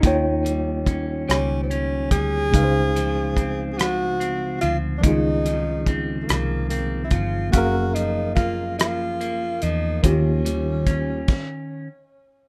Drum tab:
CC |------|------|------|------|
HH |xxxxxx|xxxxxx|xxxxxx|xxxxxx|
SD |---r--|---r--|---r--|---r--|
BD |o-o--o|o-o---|o-o--o|o-o---|

CC |---x--|
HH |xxx---|
SD |------|
BD |o-oo--|